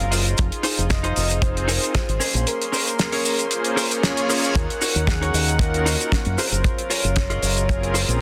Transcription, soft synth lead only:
Already playing: C5
0.91 D#5
1.42 C5
2.47 A#4
2.72 A#4
4.03 C#5
4.56 A#4
4.81 A#4
5.08 G#4
5.60 A#4
6.38 C5
6.90 C#5

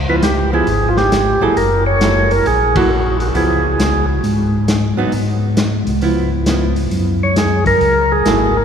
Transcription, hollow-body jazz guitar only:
0.09 F3 B3 E4
0.52 F3 B3 E4
1.41 F#3 A#3 E4 A4
2.01 F#3 A#3 E4 A4
2.76 F#3 A#3 E4 A4
3.34 F3 B3 E4
4.97 F#3 B3 D#4
6.02 F3 B3 E4
6.47 F3 B3 E4
8.26 F#3 A#3 E4 A4

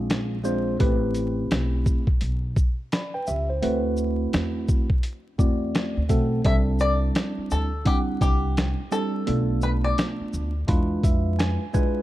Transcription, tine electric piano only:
Already playing: G#3 C4 D4 F4 G#4
0.44 G#3 C4 D4 F4 C5
0.79 A3 C4 E4 G4 B4
2.92 D5 B5
3.14 B4 G5
3.27 G4 E5
3.50 E4 C5
3.62 A3 C4 E4 F#4 B4
5.38 A3 C4 E4 F#4 D5
6.09 A3 C4 E4 F#4 A4
6.44 G3 C4 D4 E4 A4
7.85 G3 C4 D4 E4 F#5
8.91 G3 C4 D4 E4 A4
9.26 A3 B3 D4 F4 A4
10.67 G#3 D4 E4 F4 B4
11.04 E5
11.39 G#5
11.73 G#3 D4 E4 F4 B4 G#5

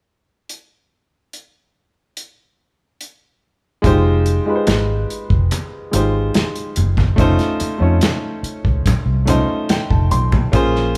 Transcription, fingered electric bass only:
3.84 F1
4.68 G#1
5.30 F1
5.94 G#1
6.77 F#1
7.18 F1
7.61 muted fingered electric bass stroke
7.81 F2
8.43 muted fingered electric bass stroke
8.65 C#2
8.86 muted fingered electric bass stroke
9.06 C2
9.91 F1
10.12 B1
10.53 A#1

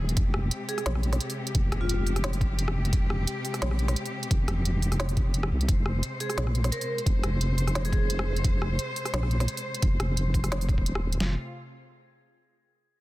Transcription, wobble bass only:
Already playing: D#1
0.17 F1
0.86 A#1
1.55 F1
1.72 F1
2.93 F1
3.62 A#1
4.31 F1
4.48 F1
5.51 C2
5.68 F1
6.37 A#1
7.06 F1
7.24 F1
8.44 F1
9.13 A#1
9.82 F1
10.00 F1
10.69 D#1
11.21 F1

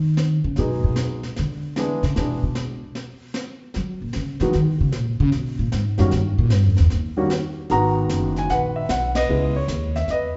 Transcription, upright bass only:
Already playing: D#3
0.44 C#3
0.58 B2
0.84 B2
1.39 D3
2.03 C#3
2.17 B2
2.43 B2
3.76 F#3
4.02 A#2
4.16 C#3
4.41 E3
4.55 D#3
4.81 C#3
4.95 A#2
5.20 C#3
5.35 B2
5.59 A#2
5.73 G#2
5.99 F#2
6.13 G2
6.38 A#2
6.53 G2
6.66 F#2
6.80 E2
6.93 D#2
7.70 G#1
8.10 F#1
8.50 A#1
8.89 B1
9.29 C#2
9.68 D#2
10.08 E2

